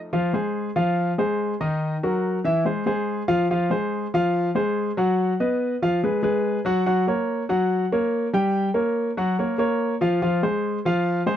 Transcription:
0.13 0.31 F3 medium
0.13 0.31 F4 medium
0.13 0.31 F5 medium
0.33 0.68 G#3 medium
0.33 0.69 G#4 medium
0.33 0.69 C5 medium
0.76 1.11 F3 medium
0.76 1.11 F4 medium
0.76 1.11 F5 medium
1.18 1.53 G#3 medium
1.18 1.53 G#4 medium
1.18 1.53 C5 medium
1.61 1.95 D#3 medium
1.61 1.95 D#4 medium
1.61 1.95 D#5 medium
2.03 2.38 F#3 medium
2.03 2.38 F#4 medium
2.03 2.38 A#4 medium
2.44 2.62 E3 medium
2.44 2.62 E4 medium
2.44 2.62 E5 medium
2.65 2.83 G#3 medium
2.65 2.83 G#4 medium
2.65 2.83 C5 medium
2.86 3.21 G#3 medium
2.86 3.21 G#4 medium
2.86 3.21 C5 medium
3.28 3.46 F3 medium
3.28 3.46 F4 medium
3.28 3.46 F5 medium
3.51 3.68 F3 medium
3.51 3.68 F4 medium
3.51 3.68 F5 medium
3.70 4.05 G#3 medium
3.70 4.05 G#4 medium
3.70 4.06 C5 medium
4.14 4.48 F3 medium
4.14 4.48 F4 medium
4.14 4.49 F5 medium
4.55 4.90 G#3 medium
4.55 4.90 G#4 medium
4.55 4.90 C5 medium
4.97 5.32 F#3 medium
4.97 5.32 F#4 medium
4.97 5.32 F#5 medium
5.40 5.74 B3 medium
5.40 5.75 B4 medium
5.40 5.74 D#5 medium
5.82 5.99 F3 medium
5.82 5.99 F4 medium
5.82 5.99 F5 medium
6.03 6.20 G#3 medium
6.03 6.20 G#4 medium
6.03 6.21 B4 medium
6.23 6.58 G#3 medium
6.23 6.58 G#4 medium
6.23 6.58 B4 medium
6.65 6.82 F#3 medium
6.65 6.83 F#4 medium
6.65 6.83 F#5 medium
6.86 7.04 F#3 medium
6.86 7.04 F#4 medium
6.86 7.04 F#5 medium
7.07 7.42 A#3 medium
7.07 7.42 A#4 medium
7.07 7.42 C#5 medium
7.49 7.84 F#3 medium
7.49 7.84 F#4 medium
7.49 7.84 F#5 medium
7.92 8.27 A#3 medium
7.92 8.27 A#4 medium
7.92 8.27 C#5 medium
8.33 8.68 G3 medium
8.33 8.68 G4 medium
8.33 8.68 G5 medium
8.74 9.09 A#3 medium
8.74 9.09 A#4 medium
8.74 9.10 C#5 medium
9.17 9.35 F#3 medium
9.17 9.35 F#4 medium
9.17 9.35 F#5 medium
9.39 9.56 A#3 medium
9.39 9.56 A#4 medium
9.39 9.56 C#5 medium
9.58 9.93 A#3 medium
9.58 9.94 A#4 medium
9.58 9.94 C#5 medium
10.01 10.18 F3 medium
10.01 10.19 F4 medium
10.01 10.19 F5 medium
10.22 10.39 F3 medium
10.22 10.40 F4 medium
10.22 10.40 F5 medium
10.43 10.78 G#3 medium
10.43 10.78 G#4 medium
10.43 10.78 C5 medium
10.85 11.20 F3 medium
10.85 11.20 F4 medium
10.85 11.20 F5 medium
11.26 11.37 G#3 medium
11.26 11.37 G#4 medium
11.26 11.37 C5 medium

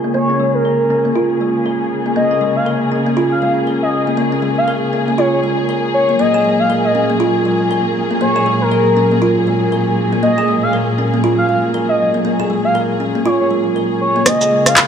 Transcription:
0.00 6.16 C#3 medium
0.00 14.22 A#3 medium
0.00 14.22 G#4 medium
0.04 0.13 A#3 medium
0.14 0.22 A#3 medium
0.14 0.51 C#5 medium
0.29 0.35 C#4 medium
0.40 0.54 G#3 medium
0.54 1.24 A#4 medium
0.65 0.79 A#4 medium
0.90 1.04 C#4 medium
1.05 1.14 A#3 medium
1.15 1.23 F4 medium
1.41 1.55 G#3 medium
1.66 1.80 A#4 medium
2.06 2.15 A#3 medium
2.16 2.24 A#3 medium
2.16 2.53 D#5 medium
2.31 2.37 C#4 medium
2.41 2.55 G#3 medium
2.56 2.68 F5 medium
2.66 2.81 A#4 medium
2.92 3.05 C#4 medium
3.07 3.16 A#3 medium
3.17 3.25 F4 medium
3.32 3.38 F5 medium
3.42 3.56 G#3 medium
3.42 3.52 F5 medium
3.67 3.81 A#4 medium
3.83 3.89 D#5 medium
3.92 4.02 D#5 medium
4.07 4.16 A#3 medium
4.17 4.26 A#3 medium
4.32 4.38 C#4 medium
4.42 4.57 G#3 medium
4.58 4.70 F5 medium
4.68 4.82 A#4 medium
4.93 5.07 C#4 medium
5.08 5.17 A#3 medium
5.18 5.26 F4 medium
5.18 5.28 C#5 medium
5.33 5.40 C#5 medium
5.44 5.58 G#3 medium
5.69 5.83 A#4 medium
5.94 6.19 C#5 medium
6.09 6.18 A#3 medium
6.19 14.22 A#2 medium
6.19 14.22 F#3 medium
6.19 6.27 A#3 medium
6.19 6.57 D#5 medium
6.34 6.40 G#4 medium
6.45 6.59 G#3 medium
6.59 6.72 F5 medium
6.70 6.84 A#4 medium
6.85 6.91 D#5 medium
6.95 7.08 C#4 medium
6.95 7.05 D#5 medium
7.10 7.19 A#3 medium
7.20 7.28 F4 medium
7.45 7.60 G#3 medium
7.71 7.85 A#4 medium
8.11 8.20 A#3 medium
8.21 8.29 A#3 medium
8.21 8.58 C#5 medium
8.36 8.42 G#4 medium
8.46 8.60 G#3 medium
8.61 9.31 A#4 loud
8.71 8.86 A#4 medium
8.97 9.10 C#4 medium
9.12 9.21 A#3 medium
9.22 9.30 F4 loud
9.47 9.61 G#3 medium
9.72 9.86 A#4 medium
10.13 10.22 A#3 medium
10.23 10.31 A#3 loud
10.23 10.60 D#5 medium
10.38 10.43 G#4 loud
10.48 10.62 G#3 medium
10.63 10.75 F5 medium
10.73 10.87 A#4 medium
10.98 11.12 C#4 medium
11.14 11.23 A#3 medium
11.24 11.32 F4 medium
11.38 11.45 F5 medium
11.49 11.63 G#3 medium
11.49 11.58 F5 medium
11.74 11.88 A#4 medium
11.89 11.96 D#5 medium
11.99 12.09 D#5 medium
12.14 12.24 A#3 medium
12.25 12.33 A#3 loud
12.40 12.45 G#4 loud
12.50 12.64 G#3 medium
12.65 12.77 F5 medium
12.75 12.89 A#4 medium
13.00 13.14 C#4 medium
13.15 13.24 A#3 medium
13.26 13.34 F4 loud
13.26 13.35 C#5 medium
13.40 13.47 C#5 medium
13.51 13.65 G#3 medium
13.76 13.90 A#4 medium
14.01 14.26 C#5 medium
14.16 14.25 A#3 medium
14.26 14.87 C#3 medium
14.26 14.87 A#3 medium
14.26 14.34 A#3 medium
14.26 14.87 G#4 medium
14.26 14.63 D#5 medium
14.26 kick loud
14.26 cross-stick medium
14.26 closed hi-hat medium
14.26 shaker medium
14.41 14.47 G#4 loud
14.41 shaker soft
14.51 14.66 G#3 medium
14.66 14.79 F5 medium
14.66 cross-stick medium
14.66 closed hi-hat soft
14.66 shaker medium
14.76 14.87 A#4 medium
14.76 kick loud
14.76 clap medium
14.76 closed hi-hat medium
14.76 shaker medium

